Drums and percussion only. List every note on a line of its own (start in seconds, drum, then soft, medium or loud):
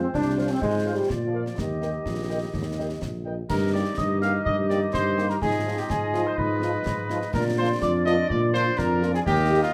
0.14 concert bass drum medium
0.14 snare medium
0.62 concert bass drum medium
0.62 snare medium
1.10 concert bass drum medium
1.10 snare medium
1.46 snare soft
1.58 concert bass drum medium
1.58 snare medium
1.82 snare soft
2.06 concert bass drum medium
2.06 snare medium
2.54 concert bass drum medium
2.54 snare medium
3.02 concert bass drum medium
3.02 snare medium
3.50 concert bass drum medium
3.50 snare medium
3.50 crash medium
3.98 concert bass drum medium
3.98 snare medium
4.22 snare medium
4.46 concert bass drum medium
4.70 snare soft
4.94 concert bass drum medium
4.94 snare medium
5.18 snare medium
5.30 snare soft
5.42 concert bass drum medium
5.42 snare medium
5.90 concert bass drum medium
5.90 snare medium
6.14 snare medium
6.38 concert bass drum medium
6.62 snare medium
6.86 concert bass drum medium
6.86 snare medium
7.10 snare medium
7.22 snare soft
7.34 concert bass drum medium
7.34 snare medium
7.34 crash soft
7.82 concert bass drum medium
7.82 snare medium
8.06 snare medium
8.30 concert bass drum medium
8.54 snare medium
8.79 concert bass drum medium
8.79 snare medium
9.02 snare medium
9.14 snare soft
9.26 concert bass drum medium
9.26 snare medium